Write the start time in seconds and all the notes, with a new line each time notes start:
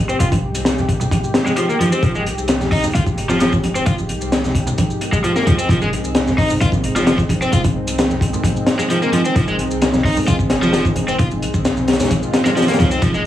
Already playing: F1 D#3 G#3 G4
0.09 C4, shaker
0.20 F1 F4, closed hi-hat, low conga, shaker
0.32 kick, closed hi-hat, high conga, shaker
0.43 C2
0.55 closed hi-hat, shaker
0.65 snare, closed hi-hat, shaker
0.78 high conga, low conga, shaker
0.89 kick, closed hi-hat
1.00 low conga, shaker
1.11 kick, closed hi-hat, high conga, shaker
1.24 shaker
1.34 snare, closed hi-hat
1.46 G#3, snare, high conga, shaker
1.56 F3, closed hi-hat, shaker
1.69 A#3, shaker
1.80 F3, closed hi-hat, high conga
1.92 C4, shaker
2.03 F1 F3, kick, closed hi-hat, low conga, shaker
2.15 G#3, high conga, shaker
2.26 C2, closed hi-hat
2.38 shaker
2.48 snare, closed hi-hat, shaker
2.60 snare, high conga, low conga, shaker
2.71 D#4, kick, open hi-hat
2.84 low conga, shaker
2.95 A#1 F4, closed hi-hat, high conga, shaker
3.06 kick, shaker
3.18 F1, closed hi-hat
3.29 F3, snare, high conga, shaker
3.40 F3, snare, closed hi-hat, shaker
3.52 kick, shaker
3.64 closed hi-hat, high conga
3.75 C4, shaker
3.86 F1 F4, kick, closed hi-hat, low conga, shaker
3.98 high conga, shaker
4.09 C2, closed hi-hat
4.21 shaker
4.32 snare, closed hi-hat, shaker
4.44 snare, high conga, low conga, shaker
4.55 kick, closed hi-hat
4.67 low conga, shaker
4.78 kick, closed hi-hat, high conga, shaker
4.90 shaker
5.01 closed hi-hat
5.12 G#3, kick, high conga, shaker
5.24 F3, closed hi-hat, shaker
5.35 A#3, snare, shaker
5.47 C2 F3, closed hi-hat, high conga
5.58 C4, shaker
5.69 F1 F3 C4, kick, closed hi-hat, low conga, shaker
5.82 G#3, high conga, shaker
5.92 C2, closed hi-hat
6.04 shaker
6.15 snare, closed hi-hat, shaker
6.27 snare, high conga, low conga, shaker
6.38 D#4, kick, open hi-hat
6.50 low conga, shaker
6.61 A#1 F4, closed hi-hat, high conga, shaker
6.72 kick, shaker
6.84 F1, closed hi-hat
6.96 F3, snare, high conga, shaker
7.07 F3, snare, closed hi-hat, shaker
7.18 kick, shaker
7.29 kick, closed hi-hat, high conga
7.42 C4, shaker
7.52 F1 F4, closed hi-hat, low conga, shaker
7.64 kick, closed hi-hat, high conga, shaker
7.76 C2
7.87 closed hi-hat, shaker
7.98 snare, closed hi-hat, shaker
8.09 high conga, low conga, shaker
8.21 kick, closed hi-hat
8.33 low conga, shaker
8.43 kick, closed hi-hat, high conga, shaker
8.56 shaker
8.66 snare, closed hi-hat
8.78 G#3, snare, high conga, shaker
8.90 F3, closed hi-hat, shaker
9.02 A#3, shaker
9.12 F3, closed hi-hat, high conga
9.25 C4, shaker
9.36 F1 F3, kick, closed hi-hat, low conga, shaker
9.47 G#3, high conga, shaker
9.59 C2, closed hi-hat
9.71 shaker
9.82 snare, closed hi-hat, shaker
9.93 snare, high conga, low conga, shaker
10.04 D#4, kick, open hi-hat
10.16 low conga, shaker
10.28 A#1 F4, closed hi-hat, high conga, shaker
10.39 kick, shaker
10.50 F1, snare, closed hi-hat
10.62 F3, snare, high conga, shaker
10.73 F3, snare, closed hi-hat, shaker
10.85 kick, shaker
10.96 closed hi-hat, high conga
11.08 C4, shaker
11.19 F1 F4, kick, closed hi-hat, low conga, shaker
11.31 high conga, shaker
11.42 C2, closed hi-hat
11.54 kick, shaker
11.65 snare, closed hi-hat, shaker
11.76 high conga, low conga, shaker
11.88 snare, closed hi-hat
11.93 snare, closed hi-hat
12.00 snare, closed hi-hat, low conga, shaker
12.04 snare, closed hi-hat
12.10 kick, closed hi-hat, swell, high conga, shaker
12.23 shaker
12.33 snare, closed hi-hat
12.45 G#3, snare, closed hi-hat, high conga, shaker
12.56 F3, snare, closed hi-hat, shaker
12.62 snare, closed hi-hat
12.68 A#3, snare, closed hi-hat, shaker
12.73 snare, closed hi-hat
12.79 C2 F3, snare, closed hi-hat, high conga
12.91 C4, shaker
13.02 F1 F3 G4, kick, closed hi-hat, low conga, shaker
13.13 G#3, high conga, shaker